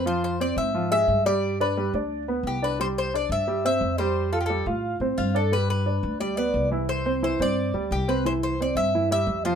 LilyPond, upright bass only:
\new Staff \with { instrumentName = "Upright bass" } { \clef bass \time 4/4 \key c \major \tempo 4 = 176 f,4. aes,4. g,4~ | g,4. d,4. c,4~ | c,4. g,4. f,4~ | f,4. a,4 a,8 g,4~ |
g,4. d,4. c,4~ | c,4. g,4 d,8 c,4~ | c,4. g,4. f,4 | }